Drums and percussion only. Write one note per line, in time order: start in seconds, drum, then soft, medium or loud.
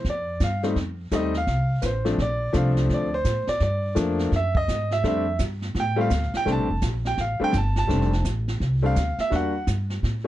0.04 brush sweep soft
0.04 kick soft
0.04 snare soft
0.40 kick soft
0.40 snare medium
0.40 hi-hat pedal soft
0.63 snare soft
0.76 brush sweep soft
0.76 kick soft
0.76 snare soft
1.11 kick soft
1.11 snare medium
1.11 hi-hat pedal medium
1.34 snare soft
1.47 brush sweep soft
1.47 kick soft
1.47 snare soft
1.82 kick soft
1.82 snare medium
1.82 hi-hat pedal medium
2.05 snare soft
2.18 brush sweep soft
2.18 kick soft
2.18 snare soft
2.53 kick soft
2.53 snare medium
2.53 hi-hat pedal medium
2.77 snare soft
2.89 brush sweep soft
2.89 kick soft
2.89 snare soft
3.25 kick soft
3.25 snare medium
3.25 hi-hat pedal medium
3.47 snare soft
3.60 brush sweep soft
3.60 kick soft
3.60 snare soft
3.96 kick soft
3.96 snare medium
3.96 hi-hat pedal medium
4.19 snare soft
4.32 brush sweep soft
4.32 kick soft
4.32 snare soft
4.55 kick medium
4.68 kick soft
4.68 snare medium
4.68 hi-hat pedal medium
4.91 snare soft
5.04 brush sweep medium
5.04 kick soft
5.04 snare soft
5.39 kick soft
5.39 snare medium
5.39 hi-hat pedal medium
5.62 snare soft
5.75 brush sweep soft
5.75 kick soft
5.75 snare soft
6.10 kick soft
6.10 snare medium
6.10 hi-hat pedal medium
6.23 snare soft
6.34 snare soft
6.46 brush sweep soft
6.46 kick soft
6.46 snare soft
6.82 kick soft
6.82 snare medium
6.82 hi-hat pedal soft
7.05 snare soft
7.17 brush sweep medium
7.17 kick soft
7.17 snare soft
7.53 kick soft
7.53 snare medium
7.53 hi-hat pedal soft
7.76 snare soft
7.89 brush sweep medium
7.89 kick soft
7.89 snare soft
8.01 snare soft
8.13 snare soft
8.25 kick soft
8.25 snare medium
8.25 hi-hat pedal medium
8.48 snare soft
8.61 brush sweep medium
8.61 kick soft
8.61 snare soft
8.96 kick soft
8.96 snare medium
8.96 hi-hat pedal medium
9.18 snare soft
9.32 brush sweep soft
9.32 kick soft
9.32 snare soft
9.67 kick soft
9.67 snare medium
9.67 hi-hat pedal medium
9.90 snare soft
10.03 brush sweep soft
10.03 kick soft
10.03 snare soft